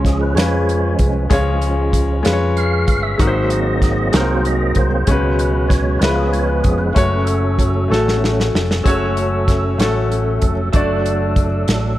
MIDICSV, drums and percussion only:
0, 0, Header, 1, 2, 480
1, 0, Start_track
1, 0, Key_signature, 3, "minor"
1, 0, Tempo, 628931
1, 997, Time_signature, 6, 3, 24, 8
1, 9148, End_track
2, 0, Start_track
2, 0, Title_t, "Drums"
2, 36, Note_on_c, 9, 36, 74
2, 43, Note_on_c, 9, 42, 61
2, 50, Note_on_c, 9, 38, 32
2, 112, Note_off_c, 9, 36, 0
2, 120, Note_off_c, 9, 42, 0
2, 127, Note_off_c, 9, 38, 0
2, 283, Note_on_c, 9, 42, 81
2, 291, Note_on_c, 9, 38, 91
2, 359, Note_off_c, 9, 42, 0
2, 368, Note_off_c, 9, 38, 0
2, 527, Note_on_c, 9, 42, 40
2, 603, Note_off_c, 9, 42, 0
2, 754, Note_on_c, 9, 42, 56
2, 759, Note_on_c, 9, 36, 68
2, 830, Note_off_c, 9, 42, 0
2, 835, Note_off_c, 9, 36, 0
2, 996, Note_on_c, 9, 42, 87
2, 998, Note_on_c, 9, 36, 102
2, 1072, Note_off_c, 9, 42, 0
2, 1074, Note_off_c, 9, 36, 0
2, 1233, Note_on_c, 9, 42, 51
2, 1310, Note_off_c, 9, 42, 0
2, 1474, Note_on_c, 9, 36, 73
2, 1478, Note_on_c, 9, 42, 70
2, 1551, Note_off_c, 9, 36, 0
2, 1554, Note_off_c, 9, 42, 0
2, 1715, Note_on_c, 9, 42, 76
2, 1724, Note_on_c, 9, 38, 102
2, 1792, Note_off_c, 9, 42, 0
2, 1800, Note_off_c, 9, 38, 0
2, 1960, Note_on_c, 9, 42, 42
2, 2036, Note_off_c, 9, 42, 0
2, 2195, Note_on_c, 9, 42, 52
2, 2198, Note_on_c, 9, 36, 77
2, 2272, Note_off_c, 9, 42, 0
2, 2274, Note_off_c, 9, 36, 0
2, 2438, Note_on_c, 9, 42, 76
2, 2439, Note_on_c, 9, 36, 103
2, 2514, Note_off_c, 9, 42, 0
2, 2515, Note_off_c, 9, 36, 0
2, 2673, Note_on_c, 9, 42, 53
2, 2749, Note_off_c, 9, 42, 0
2, 2914, Note_on_c, 9, 36, 75
2, 2917, Note_on_c, 9, 42, 68
2, 2924, Note_on_c, 9, 38, 30
2, 2990, Note_off_c, 9, 36, 0
2, 2993, Note_off_c, 9, 42, 0
2, 3000, Note_off_c, 9, 38, 0
2, 3151, Note_on_c, 9, 42, 78
2, 3159, Note_on_c, 9, 38, 110
2, 3227, Note_off_c, 9, 42, 0
2, 3236, Note_off_c, 9, 38, 0
2, 3397, Note_on_c, 9, 42, 41
2, 3473, Note_off_c, 9, 42, 0
2, 3624, Note_on_c, 9, 42, 52
2, 3633, Note_on_c, 9, 36, 74
2, 3700, Note_off_c, 9, 42, 0
2, 3710, Note_off_c, 9, 36, 0
2, 3869, Note_on_c, 9, 42, 85
2, 3874, Note_on_c, 9, 36, 95
2, 3946, Note_off_c, 9, 42, 0
2, 3951, Note_off_c, 9, 36, 0
2, 4114, Note_on_c, 9, 42, 52
2, 4190, Note_off_c, 9, 42, 0
2, 4351, Note_on_c, 9, 36, 69
2, 4357, Note_on_c, 9, 42, 70
2, 4364, Note_on_c, 9, 38, 32
2, 4427, Note_off_c, 9, 36, 0
2, 4433, Note_off_c, 9, 42, 0
2, 4440, Note_off_c, 9, 38, 0
2, 4591, Note_on_c, 9, 42, 78
2, 4600, Note_on_c, 9, 38, 104
2, 4668, Note_off_c, 9, 42, 0
2, 4676, Note_off_c, 9, 38, 0
2, 4833, Note_on_c, 9, 42, 44
2, 4910, Note_off_c, 9, 42, 0
2, 5066, Note_on_c, 9, 42, 56
2, 5072, Note_on_c, 9, 36, 80
2, 5142, Note_off_c, 9, 42, 0
2, 5149, Note_off_c, 9, 36, 0
2, 5311, Note_on_c, 9, 42, 80
2, 5313, Note_on_c, 9, 36, 118
2, 5387, Note_off_c, 9, 42, 0
2, 5389, Note_off_c, 9, 36, 0
2, 5547, Note_on_c, 9, 42, 52
2, 5624, Note_off_c, 9, 42, 0
2, 5790, Note_on_c, 9, 36, 79
2, 5795, Note_on_c, 9, 42, 74
2, 5866, Note_off_c, 9, 36, 0
2, 5871, Note_off_c, 9, 42, 0
2, 6048, Note_on_c, 9, 38, 55
2, 6124, Note_off_c, 9, 38, 0
2, 6169, Note_on_c, 9, 38, 50
2, 6245, Note_off_c, 9, 38, 0
2, 6289, Note_on_c, 9, 38, 74
2, 6366, Note_off_c, 9, 38, 0
2, 6411, Note_on_c, 9, 38, 62
2, 6487, Note_off_c, 9, 38, 0
2, 6528, Note_on_c, 9, 38, 89
2, 6604, Note_off_c, 9, 38, 0
2, 6646, Note_on_c, 9, 38, 77
2, 6723, Note_off_c, 9, 38, 0
2, 6759, Note_on_c, 9, 36, 96
2, 6761, Note_on_c, 9, 42, 79
2, 6835, Note_off_c, 9, 36, 0
2, 6838, Note_off_c, 9, 42, 0
2, 6997, Note_on_c, 9, 42, 46
2, 7074, Note_off_c, 9, 42, 0
2, 7235, Note_on_c, 9, 36, 64
2, 7236, Note_on_c, 9, 42, 60
2, 7243, Note_on_c, 9, 38, 32
2, 7311, Note_off_c, 9, 36, 0
2, 7312, Note_off_c, 9, 42, 0
2, 7319, Note_off_c, 9, 38, 0
2, 7476, Note_on_c, 9, 42, 71
2, 7485, Note_on_c, 9, 38, 97
2, 7552, Note_off_c, 9, 42, 0
2, 7561, Note_off_c, 9, 38, 0
2, 7720, Note_on_c, 9, 42, 43
2, 7797, Note_off_c, 9, 42, 0
2, 7949, Note_on_c, 9, 42, 54
2, 7956, Note_on_c, 9, 36, 64
2, 8026, Note_off_c, 9, 42, 0
2, 8032, Note_off_c, 9, 36, 0
2, 8191, Note_on_c, 9, 42, 74
2, 8196, Note_on_c, 9, 36, 104
2, 8267, Note_off_c, 9, 42, 0
2, 8273, Note_off_c, 9, 36, 0
2, 8438, Note_on_c, 9, 42, 48
2, 8515, Note_off_c, 9, 42, 0
2, 8672, Note_on_c, 9, 36, 69
2, 8672, Note_on_c, 9, 42, 56
2, 8748, Note_off_c, 9, 36, 0
2, 8748, Note_off_c, 9, 42, 0
2, 8912, Note_on_c, 9, 42, 72
2, 8921, Note_on_c, 9, 38, 96
2, 8989, Note_off_c, 9, 42, 0
2, 8997, Note_off_c, 9, 38, 0
2, 9148, End_track
0, 0, End_of_file